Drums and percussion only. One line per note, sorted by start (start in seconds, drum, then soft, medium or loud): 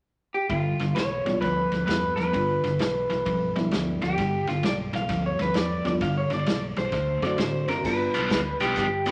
0.50 kick loud
0.50 ride medium
0.79 snare soft
0.79 ride medium
0.96 snare medium
0.96 ride medium
1.26 snare soft
1.26 ride medium
1.42 kick medium
1.42 snare soft
1.42 ride medium
1.72 snare soft
1.72 ride medium
1.88 snare loud
1.88 ride medium
2.18 snare soft
2.18 ride medium
2.33 kick medium
2.33 ride medium
2.64 snare soft
2.64 ride medium
2.79 snare loud
2.79 ride medium
3.10 snare soft
3.10 ride soft
3.26 kick medium
3.26 ride medium
3.56 snare soft
3.56 ride medium
3.71 snare medium
3.71 ride medium
4.02 snare soft
4.02 ride medium
4.18 kick medium
4.18 snare soft
4.18 ride medium
4.47 snare soft
4.47 ride medium
4.63 snare medium
4.63 ride medium
4.93 snare soft
4.93 ride medium
5.09 kick medium
5.09 snare soft
5.09 ride medium
5.39 snare soft
5.39 ride medium
5.54 snare medium
5.54 ride medium
5.85 snare soft
5.85 ride medium
6.01 kick loud
6.01 snare soft
6.01 ride medium
6.30 snare soft
6.30 ride medium
6.46 snare medium
6.46 ride medium
6.76 snare soft
6.76 ride medium
6.92 kick medium
6.92 snare soft
6.92 ride medium
7.22 snare soft
7.22 ride medium
7.38 snare medium
7.38 ride medium
7.68 snare soft
7.68 ride medium
7.84 kick medium
7.84 snare soft
7.84 crash medium
8.14 snare soft
8.14 closed hi-hat medium
8.30 kick medium
8.30 snare loud
8.30 closed hi-hat medium
8.60 snare soft
8.60 closed hi-hat medium
8.76 kick medium
8.76 snare soft
8.76 closed hi-hat medium
9.06 snare soft
9.06 closed hi-hat medium